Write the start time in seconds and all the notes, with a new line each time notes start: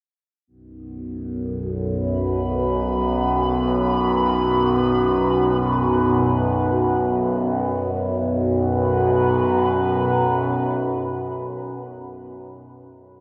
0.47 B1 F#2 B3
1.80 F#4
1.97 B5
3.25 B4
7.94 B1 F#2 B3
8.10 F#4
8.23 B4
8.37 B5